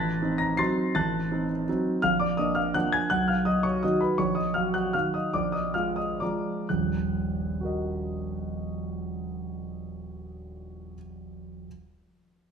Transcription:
Already playing: A1 A5 F#6 A6
0.22 C4 D#4
0.38 A#5 A#6
0.57 F#3 C4 D#4 C6 A6 C7
0.95 A1 A5 F#6 A6
1.31 C4 D#4
1.69 F#3 C4 D#4
2.02 A#1 F5 F6
2.20 D5 D6
2.37 A#3 D4 D#5 D#6
2.55 F5 F6
2.74 F3 A#3 D4 F#5 F#6
2.92 G#5 G#6
3.10 B1 F#5 F#6
3.28 F5 F6
3.45 F#3 F#4 D#5 D#6
3.63 C#5 C#6
3.83 D#3 F#3 F#4 D#5 D#6
4.01 B4 B5
4.18 A#1 C#5 C#6
4.35 D#5 D#6
4.54 F#3 F#4 F5 F6
4.74 F#5 F#6
4.93 D#3 F#3 F#4 F5 F6
5.14 D#5 D#6
5.34 A#1 D5 D6
5.52 D#5 D#6
5.74 G#3 F4 F5 F6
5.96 D#5 D#6
6.20 F3 G#3 F4 D5 A#5 D6
6.69 D#1 A#1 F#6
7.61 F#4 A#4
7.65 D#5

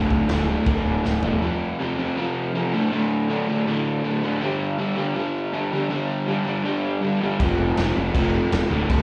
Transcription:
Already playing: D2 A2 D3
0.10 D1, kick
0.29 D1 D2 A2 D3, snare, crash
0.47 D2 A2 D3
0.65 D1 D2 A2 D3, kick, crash
0.86 D1
1.03 D1 D2 A2 D3, snare
1.23 E1 D2 A2 D3, floor tom
1.42 F2 C3 F3
1.79 F2 C3 F3
1.97 F2 C3 F3
2.16 F2 C3 F3
2.54 F2 C3 F3
2.72 D2 A2 D3
2.91 D2 A2 D3
3.28 D2 A2 D3
3.48 D2 A2 D3
3.67 D2 A2 D3
4.03 D2 A2 D3
4.22 D2 A2 D3
4.41 G2 D3 G3
4.78 G2 D3 G3
4.96 G2 D3 G3
5.15 G2 D3 G3
5.52 G2 D3 G3
5.72 G2 D3 G3
5.89 G2 D3 G3
6.27 G2 D3 G3
6.46 G2 D3 G3
6.65 G2 D3 G3
7.02 G2 D3 G3
7.21 G2 D3 G3
7.39 F1 F2 C3 F3, kick, crash
7.59 F1
7.76 F1 F2 C3 F3, snare, crash
7.95 F1 F2 C3 F3
8.14 F1 F2 C3 F3, kick, crash
8.50 E1 F2 C3 F3, snare, crash
8.69 D1 D2 A2 D3
8.88 D1 D2 A2 D3, kick, crash

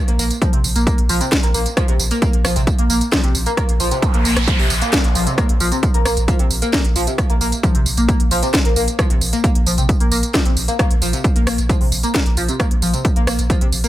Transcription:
0.08 A#1 A#3, closed hi-hat
0.19 A#1 A#3, open hi-hat, tambourine
0.31 closed hi-hat, tambourine
0.42 F3, kick, closed hi-hat, tambourine
0.53 A#1 C3, closed hi-hat
0.64 A#1, open hi-hat, tambourine
0.76 A#1 A#3, closed hi-hat, tambourine
0.87 A#3, kick, closed hi-hat, tambourine
0.98 A#1, closed hi-hat
1.09 A#1 F3, open hi-hat, tambourine
1.21 C3, closed hi-hat, tambourine
1.32 kick, snare, closed hi-hat
1.43 A#1 A#3, closed hi-hat
1.54 A#1 A#3, open hi-hat, tambourine
1.66 closed hi-hat, tambourine
1.77 F3, kick, cross-stick, closed hi-hat, tambourine
1.88 A#1 C3, closed hi-hat
1.99 A#1, open hi-hat, tambourine
2.11 A#3, closed hi-hat, tambourine
2.22 A#3, kick, closed hi-hat, tambourine
2.33 A#1, closed hi-hat
2.45 A#1 F3, cross-stick, open hi-hat, tambourine
2.56 A#1 C3, closed hi-hat, tambourine
2.67 kick, closed hi-hat, tambourine
2.78 A#1 A#3, closed hi-hat
2.90 A#1 A#3, open hi-hat, tambourine
3.01 closed hi-hat, tambourine
3.12 F3, kick, snare, closed hi-hat, tambourine
3.24 A#1 C3, closed hi-hat
3.35 A#1, open hi-hat, tambourine
3.46 A#3, closed hi-hat, tambourine
3.57 A#3, kick, cross-stick, closed hi-hat, tambourine, noise sweep
3.69 A#1, closed hi-hat
3.80 A#1 F3, open hi-hat, tambourine
3.91 C3, closed hi-hat, tambourine
4.02 kick, closed hi-hat, tambourine
4.14 A#1 A#3, closed hi-hat
4.25 A#1 A#3, open hi-hat, tambourine
4.36 A#1, cross-stick, closed hi-hat, tambourine
4.48 F3, kick, closed hi-hat, tambourine
4.59 A#1 C3, open hi-hat
4.70 A#1, open hi-hat, tambourine
4.82 A#3, closed hi-hat, tambourine
4.93 A#3, kick, snare, closed hi-hat, tambourine
5.04 A#1, closed hi-hat
5.15 A#1 F3, open hi-hat, tambourine
5.27 C3, closed hi-hat, tambourine
5.38 A#3, kick, cross-stick, closed hi-hat, tambourine
5.49 A#1, closed hi-hat
5.60 A#1 F3, open hi-hat, tambourine
5.72 C3, closed hi-hat, tambourine
5.83 kick, closed hi-hat, tambourine
5.94 A#1 A#3, closed hi-hat
6.05 A#1 A#3, cross-stick, open hi-hat, tambourine
6.17 A#1, closed hi-hat, tambourine
6.28 F3, kick, closed hi-hat, tambourine
6.39 A#1 C3, closed hi-hat
6.51 A#1, open hi-hat, tambourine
6.62 A#3, closed hi-hat, tambourine
6.73 A#3, kick, snare, closed hi-hat, tambourine
6.85 A#1, closed hi-hat
6.96 A#1 F3, open hi-hat, tambourine
7.07 C3, closed hi-hat, tambourine
7.18 kick, cross-stick, closed hi-hat, tambourine
7.30 A#1 A#3, closed hi-hat
7.41 A#1 A#3, open hi-hat, tambourine
7.52 closed hi-hat, tambourine
7.63 F3, kick, closed hi-hat, tambourine
7.75 A#1 C3, closed hi-hat
7.86 A#1, open hi-hat, tambourine
7.97 A#1 A#3, closed hi-hat, tambourine
8.09 A#3, kick, closed hi-hat, tambourine
8.20 A#1, closed hi-hat
8.31 A#1 F3, open hi-hat, tambourine
8.43 C3, closed hi-hat, tambourine
8.54 kick, snare, closed hi-hat, tambourine
8.65 A#1 A#3, closed hi-hat
8.76 A#1 A#3, open hi-hat, tambourine
8.88 closed hi-hat, tambourine
8.99 F3, kick, cross-stick, closed hi-hat, tambourine
9.10 A#1 C3, closed hi-hat
9.21 A#1, open hi-hat, tambourine
9.33 A#3, closed hi-hat, tambourine
9.44 A#3, kick, closed hi-hat, tambourine
9.55 A#1, closed hi-hat
9.66 A#1 F3, open hi-hat, tambourine
9.78 A#1 C3, closed hi-hat, tambourine
9.89 kick, closed hi-hat, tambourine
10.00 A#1 A#3, closed hi-hat
10.11 A#1 A#3, open hi-hat, tambourine
10.23 closed hi-hat, tambourine
10.34 F3, kick, snare, closed hi-hat, tambourine
10.45 A#1 C3, closed hi-hat
10.57 A#1, open hi-hat, tambourine
10.68 A#3, closed hi-hat, tambourine
10.79 A#3, kick, cross-stick, closed hi-hat, tambourine
10.91 A#1, closed hi-hat
11.02 A#1 F3, open hi-hat, tambourine
11.13 C3, closed hi-hat, tambourine
11.24 kick, closed hi-hat, tambourine
11.36 A#1 A#3, closed hi-hat
11.47 A#1 A#3, cross-stick, open hi-hat, tambourine
11.58 A#1, closed hi-hat, tambourine
11.69 F3, kick, closed hi-hat, tambourine
11.81 A#1 C3, open hi-hat
11.92 A#1, open hi-hat, tambourine
12.03 A#3, closed hi-hat, tambourine
12.14 A#3, kick, snare, closed hi-hat
12.26 A#1, closed hi-hat
12.37 A#1 F3, open hi-hat, tambourine
12.48 C3, closed hi-hat, tambourine
12.60 A#3, kick, cross-stick, closed hi-hat, tambourine
12.71 A#1, closed hi-hat
12.82 A#1 F3, open hi-hat, tambourine
12.94 C3, closed hi-hat, tambourine
13.05 kick, closed hi-hat, tambourine
13.16 A#1 A#3, closed hi-hat
13.27 A#1 A#3, cross-stick, open hi-hat, tambourine
13.39 A#1, closed hi-hat, tambourine
13.50 F3, kick, closed hi-hat, tambourine
13.61 A#1 C3, closed hi-hat
13.72 A#1, open hi-hat, tambourine
13.84 A#3, closed hi-hat, tambourine

